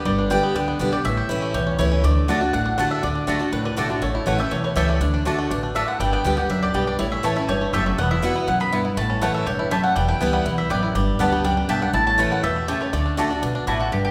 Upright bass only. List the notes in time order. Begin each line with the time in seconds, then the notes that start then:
0.05 G1
0.55 C#2
0.80 B1
1.04 A1
1.29 A1
1.54 B1
1.79 C#2
2.03 D2
2.53 A1
3.03 D2
3.28 D2
3.53 C#2
3.77 B1
4.02 A1
4.27 A1
4.51 B1
4.76 C#2
5.00 D2
5.50 A1
6.00 G1
6.25 D2
6.50 C#2
6.74 B1
6.99 A1
7.24 A1
7.48 G1
7.73 F#1
7.98 E1
8.47 B1
8.97 A1
9.46 E1
9.96 E1
10.21 C#2
10.45 B1
10.70 A1
10.95 G1
11.20 D2
11.44 C#2
11.69 B1
11.93 A1
12.43 E2
12.93 D2
13.42 B1
13.67 A1
13.92 G1